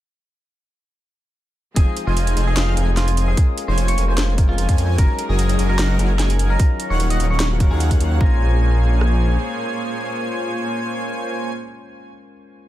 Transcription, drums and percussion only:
1.76 kick loud
1.76 closed hi-hat medium
1.97 closed hi-hat medium
2.17 closed hi-hat medium
2.27 closed hi-hat medium
2.37 closed hi-hat medium
2.57 snare loud
2.57 closed hi-hat medium
2.77 closed hi-hat medium
2.97 snare medium
2.97 closed hi-hat medium
3.08 closed hi-hat medium
3.17 closed hi-hat medium
3.37 kick loud
3.37 closed hi-hat medium
3.58 closed hi-hat medium
3.78 closed hi-hat medium
3.88 closed hi-hat medium
3.98 closed hi-hat medium
4.18 snare loud
4.18 closed hi-hat medium
4.38 kick loud
4.38 closed hi-hat medium
4.58 closed hi-hat medium
4.69 kick medium
4.69 closed hi-hat medium
4.78 closed hi-hat medium
4.98 kick loud
4.98 closed hi-hat medium
5.19 closed hi-hat medium
5.39 closed hi-hat medium
5.49 closed hi-hat medium
5.59 closed hi-hat medium
5.79 snare loud
5.79 closed hi-hat medium
5.99 closed hi-hat medium
6.19 snare medium
6.19 closed hi-hat medium
6.30 closed hi-hat medium
6.39 closed hi-hat medium
6.59 kick loud
6.59 closed hi-hat medium
6.80 closed hi-hat medium
7.00 closed hi-hat medium
7.10 closed hi-hat medium
7.20 closed hi-hat medium
7.40 snare loud
7.40 closed hi-hat medium
7.60 kick loud
7.60 closed hi-hat medium
7.80 closed hi-hat medium
7.91 kick medium
7.91 closed hi-hat medium
8.00 closed hi-hat medium
8.21 kick loud
9.01 cross-stick medium

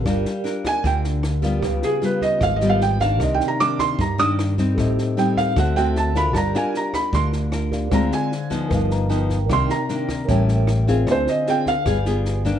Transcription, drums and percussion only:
0.06 kick medium
0.06 cross-stick medium
0.06 snare soft
0.25 snare soft
0.45 snare soft
0.65 kick soft
0.65 cross-stick medium
0.65 snare soft
0.84 kick medium
0.84 snare soft
1.04 snare soft
1.23 cross-stick medium
1.23 snare soft
1.43 kick soft
1.43 snare soft
1.62 kick medium
1.62 cross-stick medium
1.62 snare soft
1.82 snare soft
2.02 snare soft
2.22 kick soft
2.22 snare soft
2.41 kick medium
2.41 cross-stick medium
2.41 snare soft
2.60 snare soft
2.81 snare soft
3.00 kick soft
3.00 snare soft
3.20 kick medium
3.20 cross-stick medium
3.20 snare soft
3.40 snare soft
3.60 snare soft
3.79 kick soft
3.79 cross-stick medium
3.79 snare soft
3.99 kick medium
3.99 snare soft
4.19 snare soft
4.39 cross-stick medium
4.39 snare soft
4.58 kick soft
4.58 snare soft
4.78 kick medium
4.78 cross-stick medium
4.78 snare soft
4.98 snare soft
5.18 snare soft
5.37 kick soft
5.37 snare soft
5.56 kick medium
5.56 cross-stick medium
5.56 snare soft
5.76 snare soft
5.96 snare soft
6.15 kick soft
6.15 snare soft
6.35 kick medium
6.35 cross-stick medium
6.35 snare soft
6.55 snare soft
6.74 snare soft
6.93 kick soft
6.93 cross-stick medium
6.93 snare soft
7.13 kick medium
7.13 snare soft
7.32 snare soft
7.52 cross-stick medium
7.52 snare soft
7.72 kick soft
7.72 snare soft
7.91 kick medium
7.91 cross-stick medium
7.91 snare soft
8.12 snare soft
8.32 snare soft
8.51 kick soft
8.51 snare soft
8.71 kick medium
8.71 cross-stick medium
8.71 snare soft
8.90 snare soft
9.10 snare soft
9.30 kick soft
9.30 snare soft
9.49 kick medium
9.49 cross-stick medium
9.49 snare soft
9.69 snare soft
9.89 snare soft
10.09 kick soft
10.09 cross-stick medium
10.09 snare soft
10.28 kick medium
10.28 snare soft
10.48 snare soft
10.67 cross-stick medium
10.67 snare soft
10.87 kick soft
10.87 snare soft
11.07 kick medium
11.07 cross-stick medium
11.07 snare soft
11.27 snare soft
11.47 snare soft
11.66 kick soft
11.66 snare soft
11.86 kick medium
11.86 cross-stick medium
11.86 snare soft
12.05 snare soft
12.25 snare soft
12.45 kick soft
12.45 snare soft

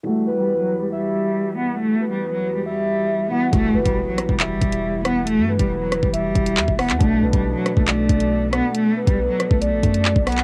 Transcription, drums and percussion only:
3.53 kick loud
3.53 closed hi-hat medium
3.86 kick medium
3.86 closed hi-hat medium
4.18 cross-stick medium
4.18 closed hi-hat medium
4.29 kick medium
4.40 clap loud
4.40 closed hi-hat medium
4.62 kick loud
4.62 closed hi-hat medium
4.72 closed hi-hat medium
5.05 cross-stick loud
5.05 closed hi-hat medium
5.27 closed hi-hat medium
5.59 kick loud
5.59 closed hi-hat medium
5.92 cross-stick medium
5.92 closed hi-hat medium
6.03 kick medium
6.14 closed hi-hat medium
6.35 kick loud
6.35 closed hi-hat medium
6.46 closed hi-hat medium
6.57 clap loud
6.68 kick medium
6.79 cross-stick loud
6.79 closed hi-hat soft
6.79 open hi-hat medium
6.90 clap medium
6.90 closed hi-hat medium
7.01 kick loud
7.01 closed hi-hat medium
7.33 kick loud
7.33 closed hi-hat medium
7.66 cross-stick medium
7.66 closed hi-hat medium
7.77 kick medium
7.88 clap loud
7.88 closed hi-hat medium
8.09 kick loud
8.09 closed hi-hat medium
8.20 closed hi-hat medium
8.53 cross-stick loud
8.53 closed hi-hat medium
8.75 closed hi-hat medium
9.07 kick loud
9.07 closed hi-hat medium
9.40 cross-stick medium
9.40 closed hi-hat medium
9.51 kick medium
9.62 closed hi-hat medium
9.83 kick loud
9.83 closed hi-hat medium
9.94 closed hi-hat medium
10.05 clap loud
10.16 kick medium
10.27 cross-stick loud
10.27 closed hi-hat medium
10.27 open hi-hat medium
10.32 closed hi-hat medium
10.38 clap medium
10.38 closed hi-hat soft

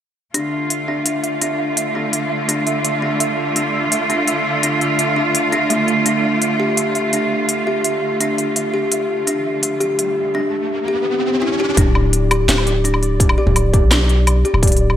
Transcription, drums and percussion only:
0.34 closed hi-hat medium
0.70 closed hi-hat medium
1.06 closed hi-hat medium
1.24 closed hi-hat soft
1.42 closed hi-hat medium
1.77 closed hi-hat medium
2.13 closed hi-hat medium
2.49 closed hi-hat medium
2.67 closed hi-hat soft
2.85 closed hi-hat medium
3.20 closed hi-hat medium
3.56 closed hi-hat medium
3.92 closed hi-hat medium
4.10 closed hi-hat soft
4.28 closed hi-hat medium
4.63 closed hi-hat medium
4.81 closed hi-hat soft
4.99 closed hi-hat medium
5.35 closed hi-hat medium
5.52 closed hi-hat soft
5.70 closed hi-hat medium
5.88 closed hi-hat soft
6.06 closed hi-hat medium
6.42 closed hi-hat medium
6.77 closed hi-hat medium
6.95 closed hi-hat soft
7.13 closed hi-hat medium
7.49 closed hi-hat medium
7.84 closed hi-hat medium
8.21 closed hi-hat medium
8.38 closed hi-hat soft
8.56 closed hi-hat medium
8.92 closed hi-hat medium
9.27 closed hi-hat medium
9.63 closed hi-hat medium
9.81 closed hi-hat soft
9.99 closed hi-hat medium
11.77 kick loud
11.77 closed hi-hat medium
11.95 low woodblock medium
12.13 closed hi-hat medium
12.31 closed hi-hat soft
12.31 low woodblock medium
12.49 snare loud
12.49 closed hi-hat medium
12.58 low woodblock medium
12.67 closed hi-hat soft
12.85 closed hi-hat medium
12.94 low woodblock medium
13.03 closed hi-hat soft
13.20 kick loud
13.20 closed hi-hat medium
13.29 low woodblock medium
13.47 kick medium
13.56 closed hi-hat medium
13.56 low woodblock medium
13.74 kick loud
13.74 closed hi-hat soft
13.91 snare loud
13.91 closed hi-hat medium
13.91 low woodblock medium
14.09 closed hi-hat soft
14.27 closed hi-hat medium
14.27 low woodblock medium
14.45 closed hi-hat soft
14.54 low woodblock medium
14.63 kick loud
14.63 closed hi-hat medium
14.67 closed hi-hat medium
14.72 closed hi-hat medium
14.77 closed hi-hat soft
14.90 low woodblock soft

